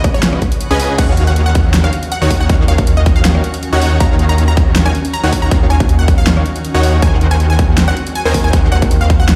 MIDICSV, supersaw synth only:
0, 0, Header, 1, 2, 480
1, 0, Start_track
1, 0, Key_signature, -6, "minor"
1, 0, Tempo, 377358
1, 1254, Time_signature, 4, 2, 24, 8
1, 11901, End_track
2, 0, Start_track
2, 0, Title_t, "Supersaw synth"
2, 0, Program_c, 0, 81
2, 0, Note_on_c, 0, 61, 102
2, 0, Note_on_c, 0, 68, 92
2, 0, Note_on_c, 0, 71, 90
2, 0, Note_on_c, 0, 75, 93
2, 0, Note_on_c, 0, 78, 112
2, 507, Note_off_c, 0, 68, 0
2, 507, Note_off_c, 0, 75, 0
2, 507, Note_off_c, 0, 78, 0
2, 508, Note_off_c, 0, 61, 0
2, 508, Note_off_c, 0, 71, 0
2, 898, Note_on_c, 0, 80, 110
2, 899, Note_on_c, 0, 61, 99
2, 899, Note_on_c, 0, 68, 88
2, 899, Note_on_c, 0, 75, 88
2, 900, Note_on_c, 0, 71, 88
2, 1226, Note_off_c, 0, 61, 0
2, 1226, Note_off_c, 0, 68, 0
2, 1226, Note_off_c, 0, 75, 0
2, 1226, Note_off_c, 0, 80, 0
2, 1227, Note_off_c, 0, 71, 0
2, 1252, Note_on_c, 0, 63, 96
2, 1252, Note_on_c, 0, 66, 90
2, 1253, Note_on_c, 0, 51, 103
2, 1253, Note_on_c, 0, 73, 94
2, 1253, Note_on_c, 0, 77, 110
2, 2426, Note_off_c, 0, 63, 0
2, 2426, Note_off_c, 0, 66, 0
2, 2426, Note_off_c, 0, 73, 0
2, 2426, Note_off_c, 0, 77, 0
2, 2427, Note_off_c, 0, 51, 0
2, 2819, Note_on_c, 0, 51, 97
2, 2819, Note_on_c, 0, 63, 92
2, 2819, Note_on_c, 0, 73, 89
2, 2820, Note_on_c, 0, 66, 91
2, 2820, Note_on_c, 0, 78, 107
2, 3146, Note_off_c, 0, 63, 0
2, 3146, Note_off_c, 0, 73, 0
2, 3147, Note_off_c, 0, 51, 0
2, 3147, Note_off_c, 0, 66, 0
2, 3147, Note_off_c, 0, 78, 0
2, 3172, Note_on_c, 0, 51, 104
2, 3172, Note_on_c, 0, 63, 92
2, 3172, Note_on_c, 0, 73, 93
2, 3172, Note_on_c, 0, 77, 110
2, 3173, Note_on_c, 0, 66, 90
2, 4346, Note_off_c, 0, 51, 0
2, 4346, Note_off_c, 0, 63, 0
2, 4346, Note_off_c, 0, 73, 0
2, 4346, Note_off_c, 0, 77, 0
2, 4347, Note_off_c, 0, 66, 0
2, 4739, Note_on_c, 0, 66, 93
2, 4740, Note_on_c, 0, 51, 98
2, 4740, Note_on_c, 0, 63, 91
2, 4740, Note_on_c, 0, 73, 91
2, 4740, Note_on_c, 0, 78, 107
2, 5067, Note_off_c, 0, 51, 0
2, 5067, Note_off_c, 0, 63, 0
2, 5067, Note_off_c, 0, 66, 0
2, 5067, Note_off_c, 0, 73, 0
2, 5067, Note_off_c, 0, 78, 0
2, 5092, Note_on_c, 0, 63, 93
2, 5092, Note_on_c, 0, 73, 95
2, 5093, Note_on_c, 0, 51, 100
2, 5093, Note_on_c, 0, 66, 94
2, 5093, Note_on_c, 0, 77, 111
2, 6266, Note_off_c, 0, 63, 0
2, 6266, Note_off_c, 0, 66, 0
2, 6266, Note_off_c, 0, 73, 0
2, 6267, Note_off_c, 0, 51, 0
2, 6267, Note_off_c, 0, 77, 0
2, 6659, Note_on_c, 0, 51, 98
2, 6659, Note_on_c, 0, 63, 90
2, 6659, Note_on_c, 0, 66, 93
2, 6659, Note_on_c, 0, 73, 88
2, 6659, Note_on_c, 0, 78, 107
2, 6986, Note_off_c, 0, 51, 0
2, 6986, Note_off_c, 0, 63, 0
2, 6986, Note_off_c, 0, 66, 0
2, 6986, Note_off_c, 0, 73, 0
2, 6986, Note_off_c, 0, 78, 0
2, 7012, Note_on_c, 0, 51, 103
2, 7012, Note_on_c, 0, 66, 95
2, 7012, Note_on_c, 0, 73, 91
2, 7012, Note_on_c, 0, 77, 112
2, 7013, Note_on_c, 0, 63, 92
2, 8186, Note_off_c, 0, 51, 0
2, 8186, Note_off_c, 0, 66, 0
2, 8186, Note_off_c, 0, 73, 0
2, 8186, Note_off_c, 0, 77, 0
2, 8187, Note_off_c, 0, 63, 0
2, 8579, Note_on_c, 0, 63, 90
2, 8580, Note_on_c, 0, 51, 103
2, 8580, Note_on_c, 0, 66, 92
2, 8580, Note_on_c, 0, 73, 92
2, 8580, Note_on_c, 0, 78, 111
2, 8906, Note_off_c, 0, 63, 0
2, 8907, Note_off_c, 0, 51, 0
2, 8907, Note_off_c, 0, 66, 0
2, 8907, Note_off_c, 0, 73, 0
2, 8907, Note_off_c, 0, 78, 0
2, 8934, Note_on_c, 0, 51, 98
2, 8934, Note_on_c, 0, 63, 92
2, 8934, Note_on_c, 0, 72, 96
2, 8934, Note_on_c, 0, 78, 109
2, 8935, Note_on_c, 0, 70, 90
2, 10107, Note_off_c, 0, 51, 0
2, 10107, Note_off_c, 0, 63, 0
2, 10107, Note_off_c, 0, 70, 0
2, 10107, Note_off_c, 0, 72, 0
2, 10107, Note_off_c, 0, 78, 0
2, 10499, Note_on_c, 0, 51, 97
2, 10499, Note_on_c, 0, 63, 89
2, 10499, Note_on_c, 0, 72, 88
2, 10499, Note_on_c, 0, 80, 111
2, 10500, Note_on_c, 0, 70, 90
2, 10826, Note_off_c, 0, 63, 0
2, 10826, Note_off_c, 0, 72, 0
2, 10827, Note_off_c, 0, 51, 0
2, 10827, Note_off_c, 0, 70, 0
2, 10827, Note_off_c, 0, 80, 0
2, 10853, Note_on_c, 0, 51, 99
2, 10853, Note_on_c, 0, 63, 90
2, 10853, Note_on_c, 0, 70, 92
2, 10853, Note_on_c, 0, 72, 92
2, 10853, Note_on_c, 0, 78, 113
2, 11901, Note_off_c, 0, 51, 0
2, 11901, Note_off_c, 0, 63, 0
2, 11901, Note_off_c, 0, 70, 0
2, 11901, Note_off_c, 0, 72, 0
2, 11901, Note_off_c, 0, 78, 0
2, 11901, End_track
0, 0, End_of_file